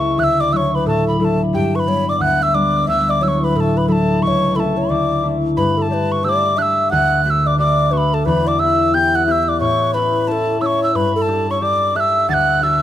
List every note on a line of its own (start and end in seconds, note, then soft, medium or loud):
0.00 0.24 C#2 medium
0.00 3.17 A3 soft
0.00 0.27 B3 soft
0.00 0.24 C#4 soft
0.00 0.53 E4 medium
0.00 0.21 C#6 medium
0.18 1.58 D2 medium
0.18 0.42 E5 medium
0.18 0.25 F#6 medium
0.24 0.42 E6 loud
0.40 0.53 D5 medium
0.40 0.54 D6 medium
0.52 1.18 F#3 soft
0.52 1.19 D4 soft
0.52 1.19 E4 soft
0.52 0.57 E5 medium
0.52 0.57 E6 medium
0.56 0.74 C#5 medium
0.56 0.77 C#6 medium
0.75 0.88 B4 medium
0.75 0.87 B5 medium
0.86 1.58 A2 medium
0.86 1.19 A4 medium
0.86 1.07 A5 medium
1.08 1.21 B5 medium
1.19 1.58 F#3 soft
1.19 1.87 D4 soft
1.19 3.21 E4 soft
1.19 1.40 A4 medium
1.19 1.26 B5 medium
1.25 1.42 A5 medium
1.53 2.25 G2 medium
1.53 1.77 G4 medium
1.53 1.77 G5 medium
1.75 1.90 B4 medium
1.75 1.81 C#6 medium
1.80 2.11 B5 medium
1.86 2.53 G3 soft
1.86 2.54 B3 soft
1.86 2.54 D4 soft
1.86 2.08 C#5 medium
2.08 2.19 D5 medium
2.08 2.23 D6 medium
2.19 2.87 D2 medium
2.19 2.43 F#5 medium
2.19 2.44 F#6 loud
2.42 2.56 E5 medium
2.42 2.56 E6 medium
2.54 2.93 G3 soft
2.54 5.65 B3 soft
2.54 3.21 D4 medium
2.54 2.89 D5 medium
2.54 2.88 D6 medium
2.87 4.27 D2 medium
2.87 3.10 E5 medium
2.87 3.12 E6 loud
3.09 3.23 D5 medium
3.09 3.25 D6 medium
3.21 3.87 F#3 soft
3.21 3.88 D4 soft
3.21 3.89 E4 soft
3.21 3.42 C#5 medium
3.21 3.29 E6 medium
3.28 3.46 C#6 medium
3.42 3.58 B4 medium
3.42 3.56 B5 medium
3.55 4.27 A2 medium
3.55 3.78 A4 medium
3.55 3.61 B5 medium
3.60 3.79 A5 medium
3.77 3.90 B4 medium
3.77 3.88 B5 medium
3.88 4.27 F#3 soft
3.88 4.28 D4 soft
3.88 4.57 E4 medium
3.88 4.22 A4 medium
3.88 3.93 B5 medium
3.92 4.24 A5 medium
4.22 4.95 C#2 medium
4.22 4.28 E5 medium
4.22 4.58 C#6 loud
4.27 4.57 C#5 medium
4.55 5.23 A3 soft
4.55 4.96 C#4 soft
4.55 5.23 E4 soft
4.55 4.78 A4 medium
4.55 4.61 B5 medium
4.60 4.91 A5 medium
4.77 4.91 C#5 medium
4.89 5.62 D2 medium
4.89 5.34 D5 medium
4.89 5.27 D6 medium
5.23 5.90 A3 soft
5.23 5.90 D4 soft
5.23 7.85 E4 medium
5.57 6.96 G2 medium
5.57 5.79 B4 medium
5.57 5.79 B5 medium
5.77 5.89 A4 medium
5.77 5.83 B5 medium
5.82 6.13 A5 medium
5.90 6.23 A3 soft
5.90 6.24 D4 soft
5.90 6.24 G4 soft
5.90 6.25 B4 medium
5.90 5.94 C#5 medium
6.12 6.26 C#6 medium
6.23 6.57 A3 soft
6.23 6.58 D4 soft
6.23 6.58 G4 medium
6.23 6.58 D5 medium
6.23 6.30 E6 medium
6.29 6.60 D6 loud
6.57 7.25 A3 medium
6.57 7.25 D4 soft
6.57 7.32 G4 medium
6.57 6.92 E5 medium
6.57 6.63 F#6 medium
6.62 6.91 E6 loud
6.90 8.31 D2 medium
6.90 7.23 F#5 loud
6.90 7.25 F#6 loud
7.24 7.58 A3 soft
7.24 7.59 D4 soft
7.24 7.59 F#4 medium
7.24 7.48 E5 medium
7.24 7.31 F#6 medium
7.30 7.48 E6 medium
7.46 7.57 D5 medium
7.46 7.59 D6 medium
7.58 7.92 A3 soft
7.58 7.92 D4 soft
7.58 7.92 F#4 medium
7.58 7.93 D5 medium
7.58 7.95 D6 loud
7.91 11.25 A3 medium
7.91 10.00 D4 soft
7.91 8.66 F#4 soft
7.91 8.15 B4 medium
7.91 7.98 C#6 medium
7.97 8.15 B5 loud
8.13 8.27 A4 medium
8.13 8.26 A5 medium
8.25 9.65 E2 medium
8.25 8.48 B4 medium
8.25 8.49 B5 loud
8.47 8.60 D5 medium
8.47 8.61 D6 loud
8.59 8.92 B3 soft
8.59 8.93 E4 soft
8.59 8.93 G4 medium
8.59 8.93 E5 medium
8.59 8.96 E6 medium
8.93 9.26 B3 soft
8.93 9.27 E4 soft
8.93 9.27 G4 medium
8.93 9.17 G5 medium
8.93 9.17 G6 loud
9.15 9.25 F#5 medium
9.15 9.28 F#6 medium
9.26 12.37 B3 soft
9.26 9.94 E4 soft
9.26 11.28 G4 medium
9.26 9.42 E5 medium
9.26 9.32 F#6 medium
9.31 9.50 E6 medium
9.42 9.50 E5 medium
9.48 9.62 D5 medium
9.48 9.60 D6 medium
9.60 11.00 A2 medium
9.60 9.96 C#5 medium
9.60 9.92 C#6 loud
9.94 10.27 C#4 soft
9.94 10.28 E4 soft
9.94 10.28 A4 soft
9.94 10.28 B4 medium
9.94 10.29 B5 medium
10.27 10.61 C#4 soft
10.27 10.62 E4 soft
10.27 10.62 A4 medium
10.27 10.33 B4 medium
10.27 10.63 A5 medium
10.32 10.60 A4 medium
10.61 11.34 C#4 soft
10.61 12.82 E4 soft
10.61 11.28 A4 soft
10.61 10.92 C#5 medium
10.61 10.67 E6 medium
10.66 10.83 C#6 medium
10.84 10.97 E6 medium
10.94 12.34 G2 medium
10.94 11.14 B4 medium
10.94 11.18 B5 medium
11.15 11.47 A4 medium
11.15 11.23 B5 medium
11.22 11.52 A5 loud
11.28 11.60 D4 soft
11.28 11.61 G4 soft
11.28 11.62 A4 medium
11.50 11.61 C#5 medium
11.50 11.64 C#6 medium
11.61 11.94 D4 soft
11.61 11.94 G4 soft
11.61 11.95 A4 soft
11.61 11.97 D5 medium
11.61 11.98 D6 medium
11.94 12.62 D4 medium
11.94 12.69 G4 soft
11.94 12.63 A4 medium
11.94 12.30 E5 medium
11.94 12.01 F#6 medium
12.00 12.30 E6 loud
12.29 12.82 D2 medium
12.29 12.63 F#5 medium
12.29 12.35 A6 loud
12.34 12.65 F#6 loud
12.62 12.82 D4 soft
12.62 12.82 F#4 soft
12.62 12.82 A4 medium
12.62 12.82 E5 medium
12.62 12.82 E6 medium